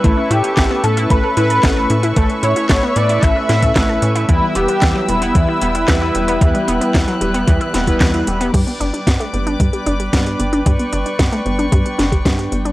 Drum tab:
CC |----------------|----------------|----------------|----------------|
HH |x-xxx-xxx-xxx-xx|xxxxx-xxx-xxx-xx|x-xxx-xxx-xxx-xx|xxxxxxxxxxxxxxxx|
CP |----x-------x---|----x---x---x---|----x-------x---|----x-------x---|
SD |----o-------o---|----o-----o-o---|----o-------o---|----o-----o-o---|
BD |o---o---o---o---|o---o---o--oo---|o---o---o---o---|o---o---o--oo---|

CC |x---------------|----------------|
HH |xxxxxxxxxxxxxxxx|xxxxxxxxxxxxxxxx|
CP |----------------|----------------|
SD |----o-------o---|----o-----o-o---|
BD |o---o---o---o---|o---o---o--oo---|